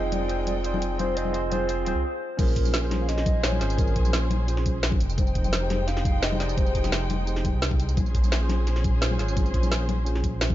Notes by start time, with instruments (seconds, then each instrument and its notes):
Already playing: detuned saw bass F1, string section G#3 D#4 G5, tine electric piano C4 F4 G#4 C5, soft synth lead D#5
0.12 soft synth lead D5, closed hi-hat, high conga
0.28 tine electric piano C4 F4 G#4 C5, closed hi-hat
0.47 soft synth lead D5, closed hi-hat, high conga
0.63 tine electric piano C4 F4 G#4 C5, soft synth lead D5, closed hi-hat
0.74 high conga
0.82 closed hi-hat
0.98 tine electric piano C4 F4 G#4 C5, soft synth lead C5, closed hi-hat, high conga
1.15 detuned saw bass F1, tine electric piano C4 F4 G#4 C5, soft synth lead D#5, closed hi-hat
1.25 high conga
1.33 tine electric piano C4 F4 G#4 C5, closed hi-hat
1.50 tine electric piano C4 F4 G#4 C5, soft synth lead C5, closed hi-hat, high conga
1.67 tine electric piano C4 F4 G#4 C5, closed hi-hat
1.85 detuned saw bass D#1, tine electric piano C4 F4 G#4 C5, soft synth lead C5, closed hi-hat, high conga
1.95 detuned saw bass C2
2.04 soft synth lead C5
2.37 detuned saw bass A#1, tine electric piano C#4 F4 G#4 C5, string section C#4 G#4 C5, soft synth lead A#4, kick, closed hi-hat, tambourine, crash, high conga
2.48 tambourine
2.56 kick, closed hi-hat
2.65 tambourine, high conga
2.74 snare, closed hi-hat, tambourine
2.81 tine electric piano C#4 F4 G#4 C5
2.91 snare, closed hi-hat, high conga
3.02 soft synth lead F5
3.08 soft synth lead D#5, snare, closed hi-hat, tambourine
3.18 snare
3.26 kick, closed hi-hat, tambourine, high conga
3.43 tine electric piano C#4 F4 G#4 C5, soft synth lead C#5, snare, closed hi-hat, tambourine
3.52 high conga
3.59 detuned saw bass G#1, tine electric piano C#4 F4 G#4 C5, soft synth lead C5, snare, closed hi-hat, tambourine
3.70 tambourine
3.78 soft synth lead A#4, kick, closed hi-hat, tambourine, high conga
3.87 tambourine
3.96 detuned saw bass A#1, kick, closed hi-hat
4.05 tambourine, high conga
4.13 snare, closed hi-hat, tambourine
4.22 tine electric piano C#4 F4 G#4 C5
4.31 closed hi-hat, high conga
4.47 tine electric piano C#4 F4 G#4 C5, closed hi-hat, tambourine
4.57 snare
4.66 kick, closed hi-hat, tambourine, high conga
4.83 snare, closed hi-hat, tambourine
4.91 kick, high conga
5.00 detuned saw bass F1, string section G#3 D#4 G5, closed hi-hat, tambourine
5.09 tambourine
5.18 soft synth lead C5, kick, closed hi-hat, tambourine, high conga
5.27 tambourine
5.35 detuned saw bass F1, kick, closed hi-hat
5.44 tambourine, high conga
5.53 snare, closed hi-hat, tambourine
5.60 tine electric piano D#4 G4 G#4 C5
5.70 snare, closed hi-hat, high conga
5.87 soft synth lead F5, snare, closed hi-hat, tambourine
5.97 snare
6.05 kick, closed hi-hat, tambourine, high conga
6.22 tine electric piano D#4 G4 G#4 C5, soft synth lead D#5, snare, closed hi-hat, tambourine
6.32 high conga
6.38 tine electric piano D#4 G4 G#4 C5, soft synth lead D5, snare, closed hi-hat, tambourine
6.49 tambourine
6.57 soft synth lead C5, kick, closed hi-hat, tambourine, high conga
6.66 tambourine
6.75 detuned saw bass F1, kick, closed hi-hat
6.84 snare, tambourine, high conga
6.92 snare, closed hi-hat, tambourine
7.00 tine electric piano D#4 G4 G#4 C5
7.10 closed hi-hat, high conga
7.26 tine electric piano D#4 G4 G#4 C5, closed hi-hat, tambourine
7.36 snare
7.45 kick, closed hi-hat, tambourine, high conga
7.54 detuned saw bass C2
7.62 snare, closed hi-hat, tambourine
7.71 kick, high conga
7.80 closed hi-hat, tambourine
7.89 tambourine
7.97 detuned saw bass A#1, string section C#4 G#4 C5, kick, closed hi-hat, tambourine, high conga
8.06 tambourine
8.15 kick, closed hi-hat
8.24 tambourine, high conga
8.32 snare, closed hi-hat, tambourine
8.40 tine electric piano C#4 F4 G#4 C5
8.49 snare, closed hi-hat, high conga
8.67 snare, closed hi-hat, tambourine
8.76 snare
8.84 kick, closed hi-hat, tambourine, high conga
9.01 tine electric piano C#4 F4 G#4 C5, snare, closed hi-hat, tambourine
9.11 high conga
9.18 detuned saw bass G#1, tine electric piano C#4 F4 G#4 C5, snare, closed hi-hat, tambourine
9.28 tambourine
9.37 kick, closed hi-hat, tambourine, high conga
9.46 tambourine
9.54 detuned saw bass A#1, kick, closed hi-hat
9.63 tambourine, high conga
9.72 snare, closed hi-hat, tambourine
9.80 tine electric piano C#4 F4 G#4 C5
9.89 closed hi-hat, high conga
10.05 tine electric piano C#4 F4 G#4 C5, closed hi-hat, tambourine
10.15 snare
10.24 kick, closed hi-hat, tambourine, high conga
10.41 snare, closed hi-hat, tambourine
10.50 kick, high conga